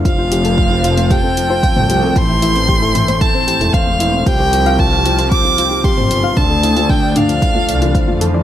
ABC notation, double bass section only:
X:1
M:4/4
L:1/16
Q:1/4=114
K:F
V:1 name="Double bass section" clef=bass
F,,,8- F,,,2 z3 C,, C,, z | A,,,6- A,,, z4 E,,, E,,,3 z | C,,8- C,,2 z3 B,,, G,,, z | D,,6- D,, z3 C,,2 z F,,2 z |]